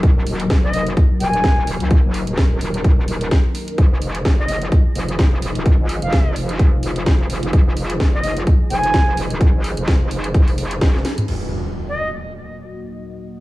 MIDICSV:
0, 0, Header, 1, 6, 480
1, 0, Start_track
1, 0, Key_signature, -6, "minor"
1, 0, Tempo, 468750
1, 33, Time_signature, 4, 2, 24, 8
1, 13723, End_track
2, 0, Start_track
2, 0, Title_t, "Flute"
2, 0, Program_c, 0, 73
2, 647, Note_on_c, 0, 75, 93
2, 855, Note_off_c, 0, 75, 0
2, 1233, Note_on_c, 0, 80, 96
2, 1713, Note_off_c, 0, 80, 0
2, 4487, Note_on_c, 0, 75, 85
2, 4695, Note_off_c, 0, 75, 0
2, 6168, Note_on_c, 0, 77, 90
2, 6513, Note_off_c, 0, 77, 0
2, 8327, Note_on_c, 0, 75, 94
2, 8535, Note_off_c, 0, 75, 0
2, 8913, Note_on_c, 0, 80, 97
2, 9393, Note_off_c, 0, 80, 0
2, 12168, Note_on_c, 0, 75, 84
2, 12376, Note_off_c, 0, 75, 0
2, 13723, End_track
3, 0, Start_track
3, 0, Title_t, "Analog synth pad"
3, 0, Program_c, 1, 89
3, 0, Note_on_c, 1, 54, 80
3, 0, Note_on_c, 1, 63, 69
3, 0, Note_on_c, 1, 70, 85
3, 3832, Note_off_c, 1, 54, 0
3, 3833, Note_off_c, 1, 70, 0
3, 3874, Note_on_c, 1, 53, 81
3, 3874, Note_on_c, 1, 68, 88
3, 11512, Note_off_c, 1, 53, 0
3, 11512, Note_off_c, 1, 63, 0
3, 11512, Note_off_c, 1, 68, 0
3, 11554, Note_on_c, 1, 58, 79
3, 11554, Note_on_c, 1, 66, 73
3, 11554, Note_on_c, 1, 75, 88
3, 13723, Note_off_c, 1, 58, 0
3, 13723, Note_off_c, 1, 66, 0
3, 13723, Note_off_c, 1, 75, 0
3, 13723, End_track
4, 0, Start_track
4, 0, Title_t, "Wobble bass"
4, 0, Program_c, 2, 39
4, 32, Note_on_c, 2, 27, 95
4, 256, Note_off_c, 2, 27, 0
4, 273, Note_on_c, 2, 27, 97
4, 496, Note_off_c, 2, 27, 0
4, 513, Note_on_c, 2, 29, 97
4, 976, Note_off_c, 2, 29, 0
4, 1233, Note_on_c, 2, 27, 94
4, 1696, Note_off_c, 2, 27, 0
4, 1713, Note_on_c, 2, 27, 96
4, 1825, Note_off_c, 2, 27, 0
4, 1847, Note_on_c, 2, 37, 96
4, 2065, Note_off_c, 2, 37, 0
4, 2087, Note_on_c, 2, 30, 98
4, 2306, Note_off_c, 2, 30, 0
4, 2327, Note_on_c, 2, 27, 97
4, 2656, Note_off_c, 2, 27, 0
4, 2673, Note_on_c, 2, 27, 99
4, 2896, Note_off_c, 2, 27, 0
4, 2912, Note_on_c, 2, 27, 99
4, 3376, Note_off_c, 2, 27, 0
4, 3872, Note_on_c, 2, 29, 99
4, 4096, Note_off_c, 2, 29, 0
4, 4113, Note_on_c, 2, 29, 99
4, 4336, Note_off_c, 2, 29, 0
4, 4352, Note_on_c, 2, 30, 96
4, 4815, Note_off_c, 2, 30, 0
4, 5073, Note_on_c, 2, 29, 96
4, 5536, Note_off_c, 2, 29, 0
4, 5553, Note_on_c, 2, 29, 97
4, 5665, Note_off_c, 2, 29, 0
4, 5687, Note_on_c, 2, 27, 95
4, 5906, Note_off_c, 2, 27, 0
4, 5928, Note_on_c, 2, 32, 100
4, 6146, Note_off_c, 2, 32, 0
4, 6167, Note_on_c, 2, 29, 96
4, 6496, Note_off_c, 2, 29, 0
4, 6513, Note_on_c, 2, 29, 99
4, 6976, Note_off_c, 2, 29, 0
4, 6993, Note_on_c, 2, 29, 98
4, 7456, Note_off_c, 2, 29, 0
4, 7473, Note_on_c, 2, 29, 99
4, 7585, Note_off_c, 2, 29, 0
4, 7607, Note_on_c, 2, 29, 90
4, 7696, Note_off_c, 2, 29, 0
4, 7713, Note_on_c, 2, 29, 93
4, 7936, Note_off_c, 2, 29, 0
4, 7953, Note_on_c, 2, 29, 96
4, 8176, Note_off_c, 2, 29, 0
4, 8193, Note_on_c, 2, 30, 95
4, 8656, Note_off_c, 2, 30, 0
4, 8913, Note_on_c, 2, 29, 95
4, 9376, Note_off_c, 2, 29, 0
4, 9392, Note_on_c, 2, 29, 102
4, 9505, Note_off_c, 2, 29, 0
4, 9527, Note_on_c, 2, 27, 95
4, 9745, Note_off_c, 2, 27, 0
4, 9767, Note_on_c, 2, 32, 95
4, 9986, Note_off_c, 2, 32, 0
4, 10007, Note_on_c, 2, 29, 94
4, 10336, Note_off_c, 2, 29, 0
4, 10353, Note_on_c, 2, 29, 97
4, 10576, Note_off_c, 2, 29, 0
4, 10593, Note_on_c, 2, 29, 100
4, 11056, Note_off_c, 2, 29, 0
4, 11073, Note_on_c, 2, 29, 98
4, 11296, Note_off_c, 2, 29, 0
4, 13723, End_track
5, 0, Start_track
5, 0, Title_t, "Impact"
5, 0, Program_c, 3, 103
5, 11553, Note_on_c, 3, 60, 65
5, 13473, Note_off_c, 3, 60, 0
5, 13723, End_track
6, 0, Start_track
6, 0, Title_t, "Drums"
6, 32, Note_on_c, 9, 36, 127
6, 32, Note_on_c, 9, 42, 47
6, 135, Note_off_c, 9, 36, 0
6, 135, Note_off_c, 9, 42, 0
6, 272, Note_on_c, 9, 46, 109
6, 374, Note_off_c, 9, 46, 0
6, 407, Note_on_c, 9, 42, 67
6, 509, Note_off_c, 9, 42, 0
6, 512, Note_on_c, 9, 36, 109
6, 512, Note_on_c, 9, 42, 50
6, 513, Note_on_c, 9, 38, 116
6, 615, Note_off_c, 9, 36, 0
6, 615, Note_off_c, 9, 38, 0
6, 615, Note_off_c, 9, 42, 0
6, 753, Note_on_c, 9, 46, 108
6, 855, Note_off_c, 9, 46, 0
6, 886, Note_on_c, 9, 42, 56
6, 989, Note_off_c, 9, 42, 0
6, 992, Note_on_c, 9, 36, 121
6, 992, Note_on_c, 9, 42, 52
6, 1095, Note_off_c, 9, 36, 0
6, 1095, Note_off_c, 9, 42, 0
6, 1232, Note_on_c, 9, 46, 114
6, 1335, Note_off_c, 9, 46, 0
6, 1367, Note_on_c, 9, 42, 64
6, 1469, Note_off_c, 9, 42, 0
6, 1472, Note_on_c, 9, 36, 109
6, 1473, Note_on_c, 9, 38, 123
6, 1473, Note_on_c, 9, 42, 51
6, 1575, Note_off_c, 9, 36, 0
6, 1575, Note_off_c, 9, 38, 0
6, 1575, Note_off_c, 9, 42, 0
6, 1713, Note_on_c, 9, 46, 102
6, 1815, Note_off_c, 9, 46, 0
6, 1847, Note_on_c, 9, 42, 64
6, 1949, Note_off_c, 9, 42, 0
6, 1952, Note_on_c, 9, 36, 124
6, 1952, Note_on_c, 9, 42, 49
6, 2055, Note_off_c, 9, 36, 0
6, 2055, Note_off_c, 9, 42, 0
6, 2192, Note_on_c, 9, 46, 104
6, 2295, Note_off_c, 9, 46, 0
6, 2327, Note_on_c, 9, 42, 64
6, 2429, Note_off_c, 9, 42, 0
6, 2432, Note_on_c, 9, 36, 105
6, 2432, Note_on_c, 9, 42, 50
6, 2433, Note_on_c, 9, 38, 115
6, 2535, Note_off_c, 9, 36, 0
6, 2535, Note_off_c, 9, 38, 0
6, 2535, Note_off_c, 9, 42, 0
6, 2673, Note_on_c, 9, 46, 101
6, 2775, Note_off_c, 9, 46, 0
6, 2807, Note_on_c, 9, 42, 61
6, 2909, Note_off_c, 9, 42, 0
6, 2912, Note_on_c, 9, 36, 114
6, 2913, Note_on_c, 9, 42, 50
6, 3015, Note_off_c, 9, 36, 0
6, 3015, Note_off_c, 9, 42, 0
6, 3153, Note_on_c, 9, 46, 107
6, 3255, Note_off_c, 9, 46, 0
6, 3287, Note_on_c, 9, 42, 62
6, 3389, Note_off_c, 9, 42, 0
6, 3392, Note_on_c, 9, 36, 105
6, 3393, Note_on_c, 9, 38, 116
6, 3393, Note_on_c, 9, 42, 50
6, 3495, Note_off_c, 9, 36, 0
6, 3495, Note_off_c, 9, 42, 0
6, 3496, Note_off_c, 9, 38, 0
6, 3633, Note_on_c, 9, 46, 102
6, 3735, Note_off_c, 9, 46, 0
6, 3766, Note_on_c, 9, 42, 62
6, 3869, Note_off_c, 9, 42, 0
6, 3872, Note_on_c, 9, 36, 121
6, 3872, Note_on_c, 9, 42, 49
6, 3975, Note_off_c, 9, 36, 0
6, 3975, Note_off_c, 9, 42, 0
6, 4112, Note_on_c, 9, 46, 104
6, 4215, Note_off_c, 9, 46, 0
6, 4247, Note_on_c, 9, 42, 66
6, 4349, Note_off_c, 9, 42, 0
6, 4352, Note_on_c, 9, 36, 99
6, 4353, Note_on_c, 9, 38, 109
6, 4353, Note_on_c, 9, 42, 50
6, 4455, Note_off_c, 9, 36, 0
6, 4455, Note_off_c, 9, 42, 0
6, 4456, Note_off_c, 9, 38, 0
6, 4592, Note_on_c, 9, 46, 99
6, 4694, Note_off_c, 9, 46, 0
6, 4726, Note_on_c, 9, 42, 59
6, 4829, Note_off_c, 9, 42, 0
6, 4832, Note_on_c, 9, 36, 113
6, 4833, Note_on_c, 9, 42, 50
6, 4935, Note_off_c, 9, 36, 0
6, 4935, Note_off_c, 9, 42, 0
6, 5073, Note_on_c, 9, 46, 103
6, 5175, Note_off_c, 9, 46, 0
6, 5207, Note_on_c, 9, 42, 63
6, 5310, Note_off_c, 9, 42, 0
6, 5312, Note_on_c, 9, 36, 107
6, 5313, Note_on_c, 9, 38, 113
6, 5313, Note_on_c, 9, 42, 51
6, 5415, Note_off_c, 9, 36, 0
6, 5415, Note_off_c, 9, 42, 0
6, 5416, Note_off_c, 9, 38, 0
6, 5553, Note_on_c, 9, 46, 103
6, 5655, Note_off_c, 9, 46, 0
6, 5687, Note_on_c, 9, 42, 62
6, 5789, Note_off_c, 9, 42, 0
6, 5792, Note_on_c, 9, 36, 115
6, 5793, Note_on_c, 9, 42, 52
6, 5895, Note_off_c, 9, 36, 0
6, 5895, Note_off_c, 9, 42, 0
6, 6033, Note_on_c, 9, 46, 104
6, 6135, Note_off_c, 9, 46, 0
6, 6167, Note_on_c, 9, 42, 64
6, 6269, Note_off_c, 9, 42, 0
6, 6272, Note_on_c, 9, 36, 101
6, 6273, Note_on_c, 9, 38, 108
6, 6273, Note_on_c, 9, 42, 51
6, 6375, Note_off_c, 9, 36, 0
6, 6375, Note_off_c, 9, 42, 0
6, 6376, Note_off_c, 9, 38, 0
6, 6513, Note_on_c, 9, 46, 96
6, 6615, Note_off_c, 9, 46, 0
6, 6647, Note_on_c, 9, 42, 63
6, 6749, Note_off_c, 9, 42, 0
6, 6752, Note_on_c, 9, 36, 115
6, 6753, Note_on_c, 9, 42, 51
6, 6855, Note_off_c, 9, 36, 0
6, 6855, Note_off_c, 9, 42, 0
6, 6993, Note_on_c, 9, 46, 100
6, 7095, Note_off_c, 9, 46, 0
6, 7126, Note_on_c, 9, 42, 64
6, 7229, Note_off_c, 9, 42, 0
6, 7232, Note_on_c, 9, 36, 100
6, 7233, Note_on_c, 9, 38, 114
6, 7233, Note_on_c, 9, 42, 52
6, 7335, Note_off_c, 9, 36, 0
6, 7335, Note_off_c, 9, 42, 0
6, 7336, Note_off_c, 9, 38, 0
6, 7473, Note_on_c, 9, 46, 98
6, 7575, Note_off_c, 9, 46, 0
6, 7607, Note_on_c, 9, 42, 65
6, 7709, Note_off_c, 9, 42, 0
6, 7712, Note_on_c, 9, 36, 114
6, 7713, Note_on_c, 9, 42, 52
6, 7815, Note_off_c, 9, 36, 0
6, 7815, Note_off_c, 9, 42, 0
6, 7953, Note_on_c, 9, 46, 99
6, 8055, Note_off_c, 9, 46, 0
6, 8087, Note_on_c, 9, 42, 70
6, 8189, Note_off_c, 9, 42, 0
6, 8192, Note_on_c, 9, 36, 102
6, 8192, Note_on_c, 9, 42, 52
6, 8193, Note_on_c, 9, 38, 109
6, 8295, Note_off_c, 9, 36, 0
6, 8295, Note_off_c, 9, 38, 0
6, 8295, Note_off_c, 9, 42, 0
6, 8433, Note_on_c, 9, 46, 95
6, 8535, Note_off_c, 9, 46, 0
6, 8567, Note_on_c, 9, 42, 63
6, 8669, Note_off_c, 9, 42, 0
6, 8672, Note_on_c, 9, 36, 109
6, 8672, Note_on_c, 9, 42, 53
6, 8775, Note_off_c, 9, 36, 0
6, 8775, Note_off_c, 9, 42, 0
6, 8912, Note_on_c, 9, 46, 102
6, 9015, Note_off_c, 9, 46, 0
6, 9047, Note_on_c, 9, 42, 68
6, 9149, Note_off_c, 9, 42, 0
6, 9152, Note_on_c, 9, 36, 95
6, 9153, Note_on_c, 9, 42, 53
6, 9154, Note_on_c, 9, 38, 117
6, 9255, Note_off_c, 9, 36, 0
6, 9256, Note_off_c, 9, 38, 0
6, 9256, Note_off_c, 9, 42, 0
6, 9393, Note_on_c, 9, 46, 99
6, 9496, Note_off_c, 9, 46, 0
6, 9528, Note_on_c, 9, 42, 65
6, 9630, Note_off_c, 9, 42, 0
6, 9632, Note_on_c, 9, 36, 116
6, 9633, Note_on_c, 9, 42, 53
6, 9735, Note_off_c, 9, 36, 0
6, 9736, Note_off_c, 9, 42, 0
6, 9873, Note_on_c, 9, 46, 99
6, 9976, Note_off_c, 9, 46, 0
6, 10007, Note_on_c, 9, 42, 69
6, 10109, Note_off_c, 9, 42, 0
6, 10112, Note_on_c, 9, 36, 99
6, 10113, Note_on_c, 9, 42, 54
6, 10114, Note_on_c, 9, 38, 117
6, 10215, Note_off_c, 9, 36, 0
6, 10216, Note_off_c, 9, 38, 0
6, 10216, Note_off_c, 9, 42, 0
6, 10353, Note_on_c, 9, 46, 94
6, 10455, Note_off_c, 9, 46, 0
6, 10487, Note_on_c, 9, 42, 63
6, 10590, Note_off_c, 9, 42, 0
6, 10593, Note_on_c, 9, 36, 116
6, 10593, Note_on_c, 9, 42, 56
6, 10695, Note_off_c, 9, 36, 0
6, 10696, Note_off_c, 9, 42, 0
6, 10728, Note_on_c, 9, 46, 59
6, 10830, Note_off_c, 9, 46, 0
6, 10833, Note_on_c, 9, 46, 100
6, 10936, Note_off_c, 9, 46, 0
6, 10967, Note_on_c, 9, 42, 67
6, 11070, Note_off_c, 9, 42, 0
6, 11073, Note_on_c, 9, 36, 99
6, 11073, Note_on_c, 9, 42, 55
6, 11074, Note_on_c, 9, 38, 120
6, 11175, Note_off_c, 9, 36, 0
6, 11176, Note_off_c, 9, 38, 0
6, 11176, Note_off_c, 9, 42, 0
6, 11207, Note_on_c, 9, 38, 49
6, 11309, Note_off_c, 9, 38, 0
6, 11313, Note_on_c, 9, 38, 76
6, 11313, Note_on_c, 9, 46, 98
6, 11415, Note_off_c, 9, 38, 0
6, 11415, Note_off_c, 9, 46, 0
6, 11447, Note_on_c, 9, 42, 70
6, 11447, Note_on_c, 9, 45, 80
6, 11549, Note_off_c, 9, 42, 0
6, 11549, Note_off_c, 9, 45, 0
6, 11553, Note_on_c, 9, 49, 74
6, 11655, Note_off_c, 9, 49, 0
6, 13723, End_track
0, 0, End_of_file